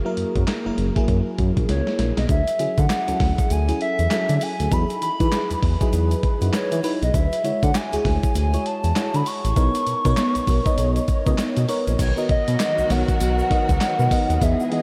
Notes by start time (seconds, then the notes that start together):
Already playing: F#3 A#3 E4 G#4 A#4
0.05 F#3 A#3 E4 A#4
0.17 F#2, closed hi-hat
0.35 F#2, kick, closed hi-hat
0.47 snare, clap, closed hi-hat
0.65 F#1 F#3 A#3 E4 A#4
0.78 F#1, closed hi-hat
0.95 F#3 A#3 E4 G#4, kick, closed hi-hat
1.08 F#2, kick, closed hi-hat
1.38 F#2, kick, closed hi-hat
1.57 A#1, kick, closed hi-hat
1.69 C#2 C#5, snare, closed hi-hat
1.87 snare
1.99 A#1, snare, closed hi-hat
2.17 B1 D#5, snare, closed hi-hat
2.29 D2 E5, kick, closed hi-hat, shaker
2.47 closed hi-hat, shaker
2.59 D3 F#3 C#4 E4 G#4, closed hi-hat, shaker
2.78 D3 F#5, kick, closed hi-hat, shaker
2.90 snare, clap, closed hi-hat, shaker
3.07 D2 F#3 C#4 E4 A4, closed hi-hat, shaker
3.20 D2, kick, snare, open hi-hat
3.38 kick, closed hi-hat, shaker
3.50 D2 G#5, closed hi-hat, shaker
3.68 F#3 C#4 E4 G#4, closed hi-hat, shaker
3.81 E5, closed hi-hat
3.99 E2, closed hi-hat, shaker
4.10 F#3 C#4 E4 A4, snare, clap, closed hi-hat, shaker
4.29 D3, closed hi-hat, shaker
4.41 G#5, open hi-hat, shaker
4.60 D2, closed hi-hat, shaker
4.71 E2 F#3 D#4 E4 G#4 B5, kick, closed hi-hat, shaker
4.90 closed hi-hat, shaker
5.02 E3 B5, closed hi-hat, shaker
5.19 E3 F#3 D#4 E4 B4, kick, closed hi-hat, shaker
5.32 snare, clap, closed hi-hat, shaker
5.50 E2, closed hi-hat, shaker
5.63 E2, kick, open hi-hat
5.80 F#3 D#4 E4 G#4, kick, closed hi-hat, shaker
5.93 E2, closed hi-hat, shaker
6.11 closed hi-hat, shaker
6.23 kick, closed hi-hat
6.41 F#2 F#3 D#4 E4 F#4, closed hi-hat, shaker
6.53 C#5, snare, clap, closed hi-hat, shaker
6.72 E3, closed hi-hat, shaker
6.83 F#3 D#4 E4 B4, open hi-hat, shaker
7.02 B1 D#5, closed hi-hat, shaker
7.14 D2 E5, kick, closed hi-hat, shaker
7.32 closed hi-hat, shaker
7.44 D3 G#3 E4 F#4 C#5, closed hi-hat, shaker
7.63 D3 F#5, kick, closed hi-hat, shaker
7.74 G#5, snare, clap, closed hi-hat, shaker
7.92 D2 G#3 E4 F#4 G#4, closed hi-hat, shaker
8.05 D2, kick, snare, open hi-hat
8.23 kick, closed hi-hat, shaker
8.35 D2 G#5, closed hi-hat, shaker
8.53 G#3 E4 F#4 C#5, closed hi-hat, shaker
8.66 A5, closed hi-hat
8.84 E2, closed hi-hat, shaker
8.96 G#3 E4 F#4 C#5, snare, clap, closed hi-hat, shaker
9.14 D3 B5, closed hi-hat, shaker
9.26 C#6, open hi-hat, shaker
9.45 A1, closed hi-hat, shaker
9.56 B1 B3 D#4 A#4 C#5, kick, closed hi-hat, shaker
9.75 closed hi-hat, shaker
9.87 B2, closed hi-hat, shaker
10.05 B2 B3 D#4 A#4 C#5, kick, closed hi-hat, shaker
10.17 snare, clap, closed hi-hat, shaker
10.35 B1, closed hi-hat, shaker
10.47 B1, kick, open hi-hat, shaker
10.65 B3 D#4 A#4 D#5, kick, closed hi-hat, shaker
10.78 B1, closed hi-hat, shaker
10.96 closed hi-hat, shaker
11.08 kick, closed hi-hat, shaker
11.26 C#2 B3 D#4 A#4 D#5, kick, closed hi-hat, shaker
11.38 snare, clap, closed hi-hat, shaker
11.56 B2, closed hi-hat, shaker
11.68 B3 D#4 A#4 C#5, open hi-hat, shaker
11.87 A#1, closed hi-hat, shaker
11.99 B1 D#3 F#3 B3 F#4 A#4 C#5, kick, closed hi-hat, crash, tambourine, shaker
12.17 B3 D#4 F#4 A#4 D#5, shaker
12.29 B2 D#5, kick, closed hi-hat
12.48 B2, closed hi-hat, shaker
12.60 snare, clap, closed hi-hat, tambourine, shaker
12.78 B1, shaker
12.89 B1 B3 D#4 F#4 A#4 C#5 F#5, snare, open hi-hat, tambourine, shaker
13.08 kick, closed hi-hat, shaker
13.20 B1, closed hi-hat, tambourine, shaker
13.39 shaker
13.50 B3 D#4 F#4 A#4 D#5, kick, closed hi-hat, tambourine
13.69 C#2, kick, closed hi-hat, shaker
13.81 snare, clap, closed hi-hat, tambourine, shaker
13.99 B2, shaker
14.11 B3 D#4 F#4 A#4 D#5, kick, open hi-hat, tambourine, shaker
14.29 D#2, closed hi-hat, shaker
14.41 E2 E3 G#3 B3 D#4 E4 G#4 D#5 E5, kick, closed hi-hat, tambourine, shaker
14.60 shaker
14.67 B3 E5
14.71 E3 D#4 E4 G#4 D#5, closed hi-hat